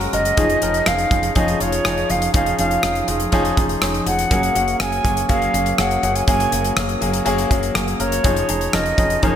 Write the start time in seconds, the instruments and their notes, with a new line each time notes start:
Already playing: analog polysynth C#3 A#3 F#4, grand piano G#3 C#4 F#4 A#4 C#5
0.01 closed hi-hat
0.12 fretless electric bass F#1, grand piano G#3 C#4 F#4 A#4, flute D#5, closed hi-hat
0.25 closed hi-hat
0.37 fretless electric bass F1, grand piano F3 C#4 D#4 G#4, analog polysynth F3 D#4 G#4, kick, closed hi-hat
0.50 closed hi-hat
0.62 fretless electric bass F1, grand piano F3 C#4 D#4 A#4, closed hi-hat
0.74 closed hi-hat
0.86 fretless electric bass F1, grand piano F3 C#4 D#4 G#4, flute F5, cross-stick, closed hi-hat
0.98 closed hi-hat
1.11 fretless electric bass F1, grand piano F3 C#4 D#4 G#4, kick, closed hi-hat
1.23 closed hi-hat
1.35 fretless electric bass F1, grand piano F3 C#4 D#4 G#4, flute D#5, kick, closed hi-hat
1.48 closed hi-hat
1.60 fretless electric bass F1, grand piano F3 C#4 D#4 F4, flute C#5, closed hi-hat
1.72 closed hi-hat
1.85 fretless electric bass F1, grand piano F3 C#4 D#4 G#4, cross-stick, closed hi-hat
1.98 closed hi-hat
2.09 fretless electric bass F1, grand piano F3 C#4 D#4 G#4, flute F5, closed hi-hat
2.22 closed hi-hat
2.34 fretless electric bass F1, grand piano F3 C#4 D#4 G#4, flute F5, kick, closed hi-hat
2.46 closed hi-hat
2.58 fretless electric bass F1, grand piano F3 C#4 D#4 G#4, flute F5, closed hi-hat
2.71 closed hi-hat
2.83 fretless electric bass F1, grand piano F3 C#4 D#4 G#4, cross-stick, closed hi-hat
2.95 closed hi-hat
3.08 fretless electric bass F1, grand piano F3 C#4 D#4 G#4, closed hi-hat
3.20 closed hi-hat
3.32 fretless electric bass F1, grand piano F3 C#4 D#4 G#4, kick, closed hi-hat
3.45 closed hi-hat
3.57 fretless electric bass F1, grand piano F3 C#4 D#4 G#4, kick, closed hi-hat
3.69 closed hi-hat
3.82 fretless electric bass F1, grand piano F3 C#4 D#4 G#4, cross-stick, closed hi-hat
3.94 closed hi-hat
4.06 fretless electric bass F1, grand piano F3 C#4 D#4 G#4, flute F#5, closed hi-hat
4.19 closed hi-hat
4.31 fretless electric bass F#1, grand piano F#3 A#3 C#4 G#4, analog polysynth F#3 C#4 A#4, kick, closed hi-hat
4.43 closed hi-hat
4.55 fretless electric bass F#1, grand piano F#3 A#3 C#4 G#4, closed hi-hat
4.68 closed hi-hat
4.80 fretless electric bass F#1, grand piano F#3 A#3 C#4 G#4, flute G#5, cross-stick, closed hi-hat
4.92 closed hi-hat
5.04 fretless electric bass F#1, grand piano F#3 A#3 C#4 G#4, kick, closed hi-hat
5.17 closed hi-hat
5.29 fretless electric bass F#1, grand piano F#3 A#3 C#4 G#4, flute F5, kick, closed hi-hat
5.42 closed hi-hat
5.53 fretless electric bass F#1, grand piano F#3 A#3 C#4 G#4, closed hi-hat
5.66 closed hi-hat
5.78 fretless electric bass F#1, grand piano F#3 A#3 C#4 G#4, flute F#5, cross-stick, closed hi-hat
5.91 closed hi-hat
6.03 fretless electric bass F#1, grand piano F#3 A#3 C#4 G#4, closed hi-hat
6.15 flute G#5, closed hi-hat
6.27 fretless electric bass F#1, grand piano F#3 A#3 C#4 G#4, flute G#5, kick, closed hi-hat
6.40 closed hi-hat
6.52 fretless electric bass F#1, grand piano F#3 A#3 C#4 G#4, closed hi-hat
6.65 closed hi-hat
6.76 fretless electric bass F#1, grand piano F#3 A#3 C#4 G#4, cross-stick, closed hi-hat
6.89 closed hi-hat
7.01 fretless electric bass F#1, grand piano F#3 A#3 C#4 G#4, closed hi-hat
7.14 closed hi-hat
7.25 fretless electric bass F#1, grand piano F#3 A#3 C#4 G#4, closed hi-hat
7.38 closed hi-hat
7.50 fretless electric bass F#1, grand piano F#3 A#3 C#4 G#4, kick, closed hi-hat
7.63 closed hi-hat
7.74 fretless electric bass F#1, grand piano F#3 A#3 C#4 G#4, cross-stick, closed hi-hat
7.88 closed hi-hat
7.99 fretless electric bass F#1, grand piano F#3 A#3 C#4 A#4, flute C#5, closed hi-hat
8.12 closed hi-hat
8.24 fretless electric bass F1, grand piano F3 C#4 D#4 G#4, kick, closed hi-hat
8.36 closed hi-hat
8.48 fretless electric bass F1, grand piano F3 C#4 D#4 G#4, closed hi-hat
8.61 closed hi-hat
8.73 fretless electric bass F1, grand piano F3 C#4 D#4 A#4, flute D#5, cross-stick, closed hi-hat
8.86 closed hi-hat
8.98 fretless electric bass F1, grand piano F3 C#4 D#4 G#4, kick, closed hi-hat
9.10 closed hi-hat
9.22 fretless electric bass F1, grand piano F3 C#4 D#4 G#4, analog polysynth F3 D#4 A#4, flute C#5, kick, closed hi-hat